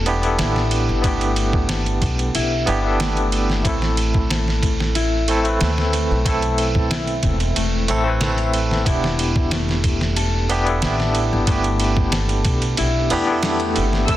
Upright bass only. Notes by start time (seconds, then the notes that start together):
Already playing: E1
0.40 A1
0.89 G1
2.02 B1
2.35 B1
2.68 G1
3.65 A1
5.62 D2
6.11 B1
7.23 E1
7.57 E1
7.90 A1
8.87 E1
10.83 A1
11.33 G1
12.46 B1
12.80 B1
13.12 E2
13.77 G1
14.09 A1